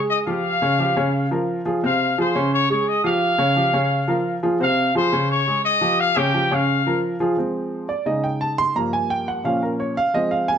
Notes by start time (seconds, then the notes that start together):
Already playing: G#3 G#4
0.09 D#5 D#6
0.27 F3 F4 G4 F5
0.62 C#3 C#4 C#5
0.79 F3 F4 G4
0.96 C#3 C#4 C#5
1.31 F3 F4 A#4
1.65 F3 F4 G#4
1.83 C3 C4 C5 F5
2.18 F3 F4 G#4 C5 C6
2.35 C#3 C#4 C#5
2.54 C#5 C#6
2.70 G#3 G#4 C#5 C#6
2.87 D#5 D#6
3.04 F3 F4 G4 F5
3.38 C#3 C#4 C#5
3.56 F3 F4 G4
3.73 C#3 C#4 C#5
4.08 F3 F4 A#4
4.43 F3 F4 G#4
4.60 C3 C4 C5 F5
4.95 F3 F4 G#4 C5 C6
5.12 C#3 C#4 C#5
5.30 C#5 C#6
5.47 G#3 G#4
5.64 D#5 D#6
5.81 F3 F4 G4
5.99 F5
6.16 C#3 C#4 G4 C#5 G5
6.34 F3 F4 G4
6.51 C#3 C#4 C#5 F5
6.86 F3 F4 A#4
7.20 F3 F4 G#4
7.37 F3 G#3 C4
7.89 D5
8.06 C#3 G#3 D#4 D#5
8.24 G5
8.41 A5
8.58 C6
8.75 G2 F3 A#3 A#5
8.93 G#5
9.10 G5
9.28 F#5
9.44 A#2 F3 C#4 F5
9.63 A#4
9.80 C#5
9.97 F5
10.14 F3 G#3 C4 D#5
10.31 F5
10.48 G#5